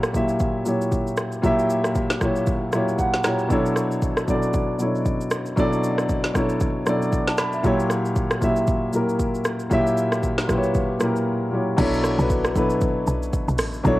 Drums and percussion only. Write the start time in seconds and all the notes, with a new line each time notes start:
0.03 cross-stick, shaker
0.14 kick, shaker
0.29 shaker
0.40 kick, shaker
0.66 shaker
0.81 shaker
0.92 kick, shaker
1.07 shaker
1.17 cross-stick, shaker
1.32 shaker
1.44 kick, shaker
1.59 shaker
1.70 shaker
1.84 cross-stick, shaker
1.95 kick, shaker
2.10 snare, shaker
2.21 kick, cross-stick, shaker
2.35 shaker
2.46 kick, shaker
2.72 cross-stick, shaker
2.88 shaker
2.99 kick, shaker
3.14 snare, shaker
3.24 cross-stick, snare, shaker
3.39 shaker
3.50 kick, shaker
3.66 shaker
3.76 cross-stick, shaker
3.91 shaker
4.02 kick, shaker
4.17 cross-stick, shaker
4.28 kick, shaker
4.42 shaker
4.53 kick, shaker
4.79 shaker
4.95 shaker
5.06 kick, shaker
5.21 shaker
5.31 cross-stick, shaker
5.46 shaker
5.57 kick, shaker
5.73 shaker
5.84 shaker
5.98 cross-stick, shaker
6.09 kick, shaker
6.24 snare, shaker
6.35 kick, cross-stick, shaker
6.49 shaker
6.60 kick, shaker
6.86 cross-stick, shaker
7.02 shaker
7.13 kick, shaker
7.28 snare, shaker
7.38 cross-stick, snare, shaker
7.53 shaker
7.64 kick, shaker
7.80 shaker
7.90 cross-stick, shaker
8.05 shaker
8.16 kick, shaker
8.31 cross-stick, shaker
8.42 kick, shaker
8.56 shaker
8.67 kick, shaker
8.93 shaker
9.09 shaker
9.19 kick, shaker
9.35 shaker
9.45 cross-stick, shaker
9.60 shaker
9.71 kick, shaker
9.87 shaker
9.97 shaker
10.12 cross-stick, shaker
10.23 kick, shaker
10.38 snare, shaker
10.49 kick, cross-stick, shaker
10.63 shaker
10.74 kick, shaker
11.00 cross-stick, shaker
11.16 shaker
11.78 kick, crash, shaker
11.94 shaker
12.04 cross-stick, shaker
12.19 shaker
12.30 kick, shaker
12.45 cross-stick, shaker
12.56 kick, shaker
12.70 shaker
12.81 kick, shaker
13.07 shaker
13.23 shaker
13.33 kick, shaker
13.48 shaker
13.58 cross-stick, open hi-hat, shaker
13.73 shaker
13.85 kick, shaker